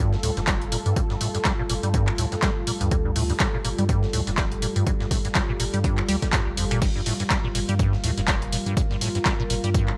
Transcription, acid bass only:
0.00 0.14 G2 loud
0.13 0.16 F2 medium
0.23 0.31 A2 medium
0.37 0.41 G2 medium
0.48 0.55 G3 loud
0.72 0.77 A#2 medium
0.86 0.95 G2 medium
1.10 1.16 G2 medium
1.21 1.28 A2 medium
1.35 1.38 G2 medium
1.45 1.53 G3 loud
1.59 1.63 A#2 loud
1.70 1.74 A#2 medium
1.83 1.89 G3 medium
1.94 2.09 G2 loud
2.08 2.11 F2 medium
2.18 2.26 A2 medium
2.32 2.36 G2 medium
2.43 2.50 G3 loud
2.67 2.72 A#2 medium
2.81 2.90 G2 medium
2.92 2.96 G2 loud
3.05 3.11 G2 medium
3.16 3.23 A2 medium
3.30 3.33 G2 medium
3.40 3.48 G3 loud
3.54 3.58 A#2 loud
3.65 3.69 A#2 medium
3.78 3.84 G3 medium
3.89 4.04 G2 loud
4.03 4.06 F2 medium
4.13 4.21 A2 medium
4.27 4.31 G2 medium
4.38 4.45 G3 loud
4.62 4.67 A#2 medium
4.76 4.85 G2 medium
4.87 4.91 G2 loud
5.00 5.06 G2 medium
5.11 5.19 A2 medium
5.25 5.28 G2 medium
5.35 5.43 G3 loud
5.49 5.53 A#2 loud
5.60 5.64 A#2 medium
5.74 5.79 G3 medium
5.84 6.00 G2 loud
5.98 6.02 F2 medium
6.09 6.16 G3 loud
6.22 6.28 G3 medium
6.33 6.41 G2 medium
6.57 6.65 F2 medium
6.71 6.80 A#2 loud
6.82 6.86 G2 loud
6.96 7.01 G2 medium
7.06 7.14 A2 medium
7.20 7.23 G2 medium
7.30 7.38 G3 loud
7.44 7.48 A#2 loud
7.55 7.59 A#2 medium
7.69 7.75 G3 medium
7.79 7.95 G2 loud
7.93 7.97 F2 medium
8.04 8.11 A2 medium
8.18 8.21 G2 medium
8.28 8.36 G3 loud
8.53 8.57 A#2 medium
8.66 8.75 G2 medium
8.77 8.81 G2 loud
8.91 8.97 G2 medium
9.01 9.09 A2 medium
9.15 9.19 G2 medium
9.26 9.33 G3 loud
9.40 9.43 A#2 loud
9.50 9.55 A#2 medium
9.64 9.70 G3 medium
9.74 9.90 G2 loud
9.88 9.92 F2 medium

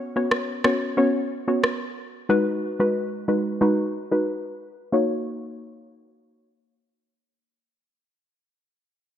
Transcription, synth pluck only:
0.00 0.12 B3 medium
0.00 0.12 C#4 medium
0.00 0.12 F#4 medium
0.00 0.12 C#5 loud
0.16 0.61 B3 medium
0.16 0.61 C#4 medium
0.16 0.61 F#4 medium
0.16 0.61 C#5 medium
0.64 0.95 B3 medium
0.64 0.95 C#4 medium
0.64 0.95 F#4 medium
0.64 0.95 C#5 medium
0.97 1.20 B3 medium
0.97 1.20 C#4 medium
0.97 1.20 F#4 medium
0.97 1.20 C#5 loud
1.48 1.69 B3 medium
1.48 1.69 C#4 medium
1.48 1.69 F#4 medium
1.48 1.69 C#5 medium
2.29 2.76 G#3 medium
2.29 2.76 D#4 medium
2.29 2.76 F#4 medium
2.29 2.76 B4 loud
2.79 3.24 G#3 medium
2.79 3.25 D#4 medium
2.79 3.25 F#4 medium
2.79 3.25 B4 medium
3.28 3.59 G#3 medium
3.28 3.59 D#4 medium
3.28 3.59 F#4 medium
3.28 3.59 B4 medium
3.61 3.83 G#3 medium
3.61 3.83 D#4 medium
3.61 3.84 F#4 medium
3.61 3.84 B4 medium
4.11 4.32 G#3 medium
4.11 4.32 D#4 medium
4.11 4.33 F#4 medium
4.11 4.33 B4 medium
4.92 8.55 A#3 medium
4.92 8.55 D#4 medium
4.92 8.55 F#4 medium
4.92 8.56 C#5 medium

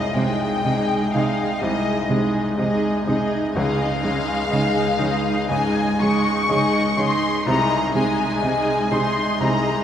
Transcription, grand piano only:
0.00 1.58 C2 soft
0.15 0.94 G#3 soft
0.65 1.43 D#5 soft
1.14 1.92 D#4 soft
1.62 3.51 C2 soft
2.11 2.88 G#3 soft
2.59 3.36 D#5 soft
3.07 3.56 D#4 soft
3.56 5.46 C#2 soft
4.04 4.80 G#3 soft
4.51 5.29 D#5 soft
4.99 5.80 D#4 soft
5.49 6.30 G#2 soft
6.00 6.78 G#3 soft
6.50 7.27 D#5 soft
6.97 7.46 D#4 soft
7.46 9.37 C2 medium
7.94 8.72 G#3 soft
8.42 9.21 D#5 soft
8.91 9.70 D#4 soft
9.40 9.84 C2 soft

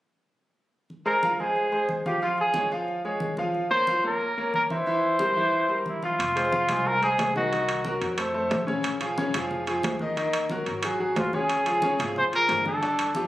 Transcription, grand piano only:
1.06 1.19 G#3 medium
1.06 1.19 G#4 medium
1.06 1.20 C5 medium
1.23 1.36 F3 medium
1.23 1.37 F4 medium
1.23 1.37 F5 medium
1.40 1.67 G#3 medium
1.40 1.67 G#4 medium
1.40 1.67 C5 medium
1.72 1.99 G#3 medium
1.72 1.99 G#4 medium
1.72 1.99 C5 medium
2.06 2.19 F3 medium
2.06 2.19 F4 medium
2.06 2.19 F5 medium
2.22 2.49 F3 medium
2.22 2.50 F4 medium
2.22 2.49 F5 medium
2.56 2.69 G#3 medium
2.56 2.69 G#4 medium
2.56 2.69 C#5 medium
2.71 2.99 F3 medium
2.71 2.99 F4 medium
2.71 2.99 F5 medium
3.05 3.32 G#3 medium
3.05 3.32 G#4 medium
3.05 3.32 C#5 medium
3.38 3.65 F3 medium
3.38 3.65 F4 medium
3.38 3.66 F5 medium
3.71 3.84 A#3 medium
3.71 3.85 A#4 medium
3.71 3.85 C#5 medium
3.87 4.01 F3 medium
3.87 4.01 F4 medium
3.87 4.02 F5 medium
4.04 4.31 A#3 medium
4.04 4.31 A#4 medium
4.04 4.31 C#5 medium
4.38 4.65 A#3 medium
4.38 4.65 A#4 medium
4.38 4.65 C#5 medium
4.70 4.84 E3 medium
4.70 4.84 E4 medium
4.70 4.84 E5 medium
4.87 5.14 E3 medium
4.87 5.14 E4 medium
4.87 5.14 E5 medium
5.20 5.33 G3 medium
5.20 5.34 G4 medium
5.20 5.34 A#4 medium
5.36 5.64 E3 medium
5.36 5.64 E4 medium
5.36 5.64 E5 medium
5.69 5.97 G3 medium
5.69 5.97 G4 medium
5.69 5.97 A#4 medium
6.02 6.16 F3 medium
6.02 6.17 F4 medium
6.02 6.17 F5 medium
6.36 6.49 G#3 medium
6.36 6.50 G#4 medium
6.36 6.50 C5 medium
6.52 6.66 F3 medium
6.52 6.66 F4 medium
6.52 6.66 F5 medium
6.69 6.97 G#3 medium
6.69 6.97 G#4 medium
6.69 6.97 C5 medium
7.01 7.29 G#3 medium
7.01 7.29 G#4 medium
7.01 7.29 C5 medium
7.35 7.49 D#3 medium
7.35 7.50 D#4 medium
7.35 7.50 D#5 medium
7.53 7.80 D#3 medium
7.53 7.80 D#4 medium
7.53 7.80 D#5 medium
7.85 8.13 F#3 medium
7.85 8.13 F#4 medium
7.85 8.13 A#4 medium
8.18 8.32 A3 medium
8.18 8.32 A4 medium
8.18 8.32 C5 medium
8.34 8.62 A3 medium
8.34 8.62 A4 medium
8.34 8.62 C5 medium
8.67 8.95 C#3 medium
8.67 8.95 C#4 medium
8.67 8.95 C#5 medium
9.00 9.14 F3 medium
9.00 9.15 F4 medium
9.00 9.15 G#4 medium
9.18 9.31 C#3 medium
9.18 9.32 C#4 medium
9.18 9.32 C#5 medium
9.35 9.62 F3 medium
9.35 9.62 F4 medium
9.35 9.62 G#4 medium
9.68 9.95 F3 medium
9.68 9.95 F4 medium
9.68 9.95 G#4 medium
10.01 10.14 D#3 medium
10.01 10.15 D#4 medium
10.01 10.15 D#5 medium
10.17 10.44 D#3 medium
10.17 10.44 D#4 medium
10.17 10.45 D#5 medium
10.51 10.78 F#3 medium
10.51 10.78 F#4 medium
10.51 10.78 A#4 medium
10.84 10.97 F#3 medium
10.84 10.97 F#4 medium
10.84 10.98 G#4 medium
11.00 11.27 F#3 medium
11.00 11.27 F#4 medium
11.00 11.27 G#4 medium
11.33 11.61 C#3 medium
11.33 11.61 C#4 medium
11.33 11.61 C#5 medium
11.66 11.80 F3 medium
11.66 11.80 F4 medium
11.66 11.80 G#4 medium
11.83 11.96 C#3 medium
11.83 11.97 C#4 medium
11.83 11.97 C#5 medium
12.00 12.27 F3 medium
12.00 12.27 F4 medium
12.00 12.27 G#4 medium
12.32 12.60 F3 medium
12.32 12.60 F4 medium
12.32 12.60 G#4 medium
12.65 12.79 D3 medium
12.65 12.79 D4 medium
12.65 12.79 D5 medium
12.82 13.09 D3 medium
12.82 13.10 D4 medium
12.82 13.10 D5 medium
13.15 13.27 F3 medium
13.15 13.27 F4 medium
13.15 13.27 G4 medium

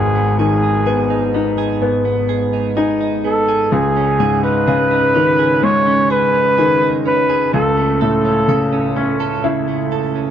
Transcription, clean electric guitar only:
0.00 1.80 G#2 medium
0.00 0.15 B3 medium
0.00 0.39 G#4 medium
0.15 1.33 B3 medium
0.39 0.86 G#4 medium
0.63 1.10 D#4 soft
0.87 1.58 G#4 medium
1.10 2.53 D#4 medium
1.34 2.04 B3 medium
1.58 2.29 G#4 medium
1.82 3.82 G#2 medium
2.05 3.23 B3 medium
2.29 2.76 G#4 medium
2.53 3.00 D#4 soft
2.77 3.48 G#4 medium
3.01 3.99 D#4 medium
3.24 3.82 B3 medium
3.48 4.20 G#4 medium
3.72 5.61 C#3 medium
3.96 5.15 C#4 medium
4.20 4.66 G#4 medium
4.44 4.90 D#4 soft
4.68 5.38 G#4 medium
4.91 6.33 D#4 medium
5.15 5.86 C#4 medium
5.39 6.09 G#4 medium
5.63 7.52 C#3 medium
5.87 7.05 C#4 medium
6.10 6.57 G#4 medium
6.34 6.81 D#4 soft
6.58 7.28 G#4 medium
6.82 7.63 D#4 soft
7.06 7.77 C#4 medium
7.30 7.63 G#4 medium
7.53 9.43 C#3 medium
7.77 8.95 A3 medium
8.01 8.48 A4 medium
8.25 8.71 C#4 soft
8.49 9.19 A4 medium
8.73 10.14 C#4 medium
8.96 9.67 A3 medium
9.20 9.91 A4 medium
9.44 10.31 C#3 medium
9.68 10.31 A3 medium
9.92 10.31 A4 medium
10.15 10.31 C#4 soft

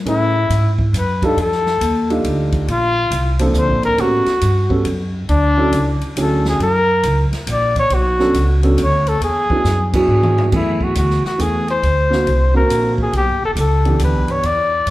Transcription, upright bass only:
0.05 0.48 A2 medium
0.50 0.92 G#2 medium
0.93 1.36 F#2 medium
1.36 1.79 F2 medium
1.81 2.23 D#2 medium
2.24 2.66 D2 medium
2.67 3.10 A#1 medium
3.10 3.53 C2 medium
3.54 3.68 D2 medium
3.68 3.82 A#1 medium
3.83 3.97 A1 medium
3.97 4.24 A2 medium
4.26 muted upright bass stroke soft
4.42 4.84 G2 medium
4.85 5.28 F#2 medium
5.29 5.71 D2 medium
5.72 5.99 C#2 medium
6.01 muted upright bass stroke soft
6.16 6.59 D2 medium
6.59 7.02 F#2 medium
7.03 7.30 C#2 medium
7.31 muted upright bass stroke soft
7.47 7.89 A#1 medium
7.90 8.33 B1 medium
8.33 8.76 C#2 medium
8.77 9.20 D2 medium
9.20 9.47 E2 medium
9.50 muted upright bass stroke soft
9.64 10.07 F#2 medium
10.08 10.50 G#2 medium
10.52 10.94 F#2 medium
10.95 11.22 D2 medium
11.24 muted upright bass stroke soft
11.39 11.81 E2 medium
11.83 12.25 D2 medium
12.26 12.68 C2 medium
12.69 13.11 A#1 medium
13.13 13.29 B1 medium
13.28 13.41 G1 medium
13.42 13.55 E1 medium
13.55 13.98 C#2 medium
13.99 14.14 D2 medium
14.14 14.28 B1 medium
14.28 14.42 G1 medium
14.43 14.85 E2 medium
14.86 14.90 F#2 medium

